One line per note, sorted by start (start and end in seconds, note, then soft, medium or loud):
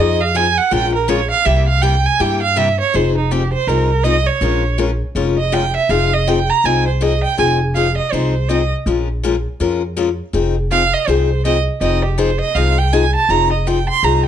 0.00 0.57 F2 loud
0.00 0.19 F3 medium
0.00 0.19 C4 medium
0.00 0.19 D#4 medium
0.00 0.19 G#4 medium
0.00 0.22 D#5 medium
0.21 0.37 F5 loud
0.35 0.46 F3 medium
0.35 0.46 C4 medium
0.35 0.46 D#4 medium
0.35 0.46 G#4 loud
0.35 0.59 G#5 loud
0.57 0.74 F#5 loud
0.71 1.31 A#1 medium
0.71 0.92 F3 medium
0.71 0.92 G#3 medium
0.71 0.93 C#4 medium
0.71 0.93 F4 medium
0.71 0.93 A#4 medium
0.71 0.94 G5 loud
0.95 1.10 A#4 medium
1.08 1.19 F3 loud
1.08 1.20 G#3 loud
1.08 1.20 C#4 loud
1.08 1.20 F4 loud
1.08 1.20 A#4 medium
1.08 1.30 C#5 medium
1.30 1.47 F5 loud
1.45 2.05 C2 medium
1.45 1.66 C3 medium
1.45 1.66 G3 medium
1.45 1.67 A#3 medium
1.45 1.67 E4 medium
1.45 1.67 G4 medium
1.45 1.67 E5 medium
1.68 1.84 F5 loud
1.82 1.94 C3 medium
1.82 1.94 G3 medium
1.82 1.94 A#3 medium
1.82 1.94 E4 medium
1.82 1.94 G4 medium
1.82 2.07 G5 loud
2.06 2.22 G#5 loud
2.20 2.79 G2 medium
2.20 2.40 C3 medium
2.20 2.41 G3 medium
2.20 2.41 A#3 medium
2.20 2.41 E4 medium
2.20 2.41 G4 medium
2.20 2.42 G5 medium
2.42 2.59 F5 medium
2.56 2.67 C3 medium
2.56 2.68 G3 medium
2.56 2.68 A#3 loud
2.56 2.68 E4 medium
2.56 2.68 G4 loud
2.56 2.79 E5 medium
2.80 2.97 C#5 loud
2.94 3.53 F1 medium
2.94 3.15 F3 medium
2.94 3.15 C4 medium
2.94 3.15 D#4 medium
2.94 3.15 G#4 medium
2.94 3.17 C5 medium
3.17 3.33 D#4 medium
3.31 3.42 F3 medium
3.31 3.42 C4 medium
3.31 3.42 D#4 medium
3.31 3.52 G4 medium
3.31 3.42 G#4 medium
3.53 3.69 C5 medium
3.67 4.27 C2 medium
3.67 3.89 F3 medium
3.67 3.89 C4 medium
3.67 3.89 D#4 medium
3.67 3.89 G#4 medium
3.67 4.05 A#4 medium
4.04 4.15 F3 medium
4.04 4.16 C4 medium
4.04 4.16 D#4 medium
4.04 4.16 G#4 medium
4.04 4.28 D#5 loud
4.26 4.78 C#5 medium
4.41 5.01 A#1 medium
4.41 4.62 F3 medium
4.41 4.63 G#3 medium
4.41 4.63 C#4 medium
4.41 4.63 F4 medium
4.41 4.63 A#4 medium
4.78 4.89 F3 medium
4.78 4.90 G#3 medium
4.78 4.90 C#4 medium
4.78 4.90 F4 medium
4.78 4.90 A#4 medium
5.15 5.75 F1 medium
5.15 5.36 F3 medium
5.15 5.37 G#3 medium
5.15 5.37 C#4 medium
5.15 5.37 F4 medium
5.15 5.37 A#4 medium
5.38 5.55 D#5 medium
5.52 5.64 F3 medium
5.52 5.64 G#3 medium
5.52 5.64 C#4 medium
5.52 5.64 F4 medium
5.52 5.64 A#4 medium
5.52 5.75 G5 loud
5.76 5.92 E5 medium
5.89 6.49 F1 medium
5.89 6.10 F3 medium
5.89 6.11 C4 medium
5.89 6.11 D#4 medium
5.89 6.11 G#4 medium
5.89 6.15 F5 loud
6.13 6.29 D#5 loud
6.27 6.38 F3 medium
6.27 6.38 C4 medium
6.27 6.39 D#4 medium
6.27 6.39 G#4 medium
6.27 6.51 G5 loud
6.49 6.66 A#5 loud
6.64 7.23 C2 medium
6.64 6.85 F3 medium
6.64 6.85 C4 medium
6.64 6.86 D#4 medium
6.64 6.86 G#4 medium
6.64 6.87 G#5 loud
6.88 7.04 C5 soft
7.01 7.12 F3 medium
7.01 7.12 C4 medium
7.01 7.12 D#4 medium
7.01 7.13 G#4 medium
7.01 7.23 D#5 medium
7.24 7.37 G5 loud
7.37 7.97 F1 medium
7.37 7.58 F3 medium
7.37 7.59 C4 medium
7.37 7.59 D#4 medium
7.37 7.59 G#4 medium
7.37 7.52 G#5 medium
7.75 7.86 F3 medium
7.75 7.86 C4 medium
7.75 7.87 D#4 medium
7.75 7.87 G#4 medium
7.75 7.96 F5 medium
7.97 8.14 D#5 medium
8.12 8.71 C2 medium
8.12 8.33 F3 medium
8.12 8.33 C4 medium
8.12 8.34 D#4 medium
8.12 8.34 G#4 medium
8.12 8.50 C5 medium
8.49 8.60 F3 medium
8.49 8.60 C4 medium
8.49 8.61 D#4 medium
8.49 8.61 G#4 medium
8.49 8.71 D#5 medium
8.86 9.45 A#1 medium
8.86 9.07 F3 medium
8.86 9.07 G#3 medium
8.86 9.07 C#4 medium
8.86 9.08 F4 medium
8.86 9.08 A#4 medium
9.23 9.34 F3 medium
9.23 9.35 G#3 medium
9.23 9.35 C#4 medium
9.23 9.35 F4 medium
9.23 9.35 A#4 loud
9.60 10.19 F2 medium
9.60 9.81 F3 medium
9.60 9.81 G#3 medium
9.60 9.81 C#4 medium
9.60 9.81 F4 medium
9.60 9.82 A#4 medium
9.96 10.08 F3 medium
9.96 10.08 G#3 medium
9.96 10.08 C#4 medium
9.96 10.08 F4 medium
9.96 10.08 A#4 medium
10.33 10.93 F1 medium
10.33 10.54 F3 medium
10.33 10.55 C4 medium
10.33 10.55 D#4 medium
10.33 10.55 G#4 medium
10.71 10.82 F3 medium
10.71 10.82 C4 medium
10.71 10.82 D#4 medium
10.71 10.83 G#4 medium
10.71 10.95 F5 loud
10.93 11.09 D#5 medium
11.08 11.67 C2 medium
11.08 11.28 F3 medium
11.08 11.29 C4 medium
11.08 11.29 D#4 medium
11.08 11.29 G#4 medium
11.08 11.44 C5 medium
11.45 11.56 F3 medium
11.45 11.56 C4 medium
11.45 11.56 D#4 medium
11.45 11.56 G#4 medium
11.45 11.58 D#5 loud
11.81 12.40 F1 medium
11.81 12.02 F3 medium
11.81 12.02 C4 medium
11.81 12.03 D#4 medium
11.81 12.03 G#4 medium
11.81 12.02 D#5 medium
12.05 12.20 G4 soft
12.18 12.29 F3 medium
12.18 12.29 C4 medium
12.18 12.30 D#4 loud
12.18 12.30 G#4 medium
12.18 12.40 C5 medium
12.40 12.57 D#5 medium
12.55 13.14 C2 medium
12.55 12.76 F3 medium
12.55 12.76 C4 medium
12.55 12.77 D#4 medium
12.55 12.77 G#4 medium
12.55 12.80 F5 medium
12.78 12.94 G5 medium
12.93 13.04 F3 medium
12.93 13.04 C4 loud
12.93 13.04 D#4 loud
12.93 13.04 G#4 medium
12.93 13.14 G#5 loud
13.15 13.31 A5 loud
13.29 13.88 F1 medium
13.29 13.50 F3 medium
13.29 13.50 C4 medium
13.29 13.51 D#4 medium
13.29 13.51 G#4 medium
13.29 13.52 A#5 loud
13.52 13.68 D#5 medium
13.67 13.77 F3 medium
13.67 13.78 C4 medium
13.67 13.78 D#4 medium
13.67 13.78 G#4 medium
13.67 13.89 G5 medium
13.89 14.06 C6 loud
14.03 14.28 C2 medium
14.03 14.24 F3 medium
14.03 14.24 C4 medium
14.03 14.24 D#4 medium
14.03 14.24 G#4 medium
14.03 14.25 A#5 medium